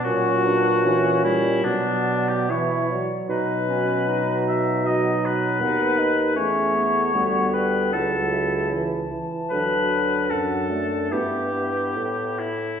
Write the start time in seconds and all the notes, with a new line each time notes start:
0.04 A#2 F#3 C#4 F#4 C#5
0.45 D4 B4
0.83 E3 C#4 C#5
1.24 G3 E4
1.63 B2 F#3 B3 D4 D5
2.29 G4
2.49 E3 E4 C#5 E5
2.90 F#3 D5
3.29 B2 D#4 B4 D#5
3.69 C#4
4.08 D#4
4.49 E5
4.86 F#3 D#5
5.25 B4
5.60 D#2 B3 D#4 F#5
5.99 D#5
6.35 E2 A3 C#4 C#5 E5
6.75 B3
7.13 D2 G3 B3 F#5
7.53 B4 G5
7.92 C#2 F#3 E4 A4 F#5
8.32 E5
8.72 E3 A5
9.11 E3
9.50 D2 F#3 D4 B4
10.30 F#2 F#3 A4 F#5
10.71 A3 D5
11.11 G2 B3 E4 G4 E5
11.54 B3 E5
11.96 A2
12.39 E4